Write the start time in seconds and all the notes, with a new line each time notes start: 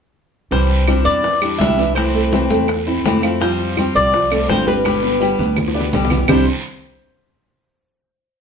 0.51 C2 C3 E3 G3 D4 E4 C5, high bongo, high conga, long guiro
0.70 high bongo, high conga
0.87 C3 E3 G3 C4 D4 E4 C5, high bongo, high conga, short guiro, claves
1.05 E2 D5, high bongo, short guiro
1.23 E3 E4, muted steel-string acoustic guitar stroke, high bongo, high conga, long guiro
1.41 G3 D4 E4 G4, high bongo, high conga, claves
1.58 C2 C3 E3 G3 D4 E4 E5, high bongo, low bongo, high conga, short guiro
1.78 E3 G3 D4 E4, high conga, short guiro
1.95 C3 E3 A3 C4 E4 C5, high bongo, high conga, long guiro, claves
2.14 A3 A4, high bongo, high conga
2.32 C3 E3 A3 C4 E4, high bongo, high conga, short guiro
2.50 E2 A3 A4, high conga, short guiro
2.68 muted steel-string acoustic guitar stroke, high bongo, high conga, long guiro, claves
2.86 A3 C4 E4 C5, high bongo, high conga
3.04 F2 C3 E3 A3 C4 E4, high bongo, low bongo, high conga, short guiro
3.22 F3 A3 C4 E4 F4, high bongo, short guiro, claves
3.40 F3 G3 C4 F4 C5, high bongo, high conga, long guiro
3.60 high bongo, high conga
3.77 F3 G3 C4 F4 C5, high bongo, high conga, short guiro, claves
3.95 C2 D5, high bongo, short guiro
4.13 F3 F4, muted steel-string acoustic guitar stroke, high bongo, high conga, long guiro
4.31 G3 A3 C4 F4 A4, high bongo, high conga, claves
4.48 G1 F3 G3 C4 F4 C5, high bongo, low bongo, high conga, short guiro
4.66 G3 C4 F4 G4 B4, high conga, short guiro
4.84 B2 D3 G3 B3 G4, high bongo, high conga, long guiro, claves
5.03 B3 B4, high bongo
5.20 B2 D3 G3 B3 G4, high bongo, short guiro
5.38 D2 B3 B4, low conga, short guiro
5.56 muted steel-string acoustic guitar stroke, high bongo, low conga, long guiro, claves
5.68 high bongo
5.74 G3 B3 D4 G4 D5
5.81 low bongo
5.92 C2 B2 D3 G3 B3 G4, low conga, short guiro
6.05 low bongo
6.10 E3 G3 B3 E4 G4, low conga, short guiro, claves
6.17 low bongo
6.28 C2 C3 E3 G3 C4 D4 E4 G4 C5, low bongo, low conga, long guiro, claves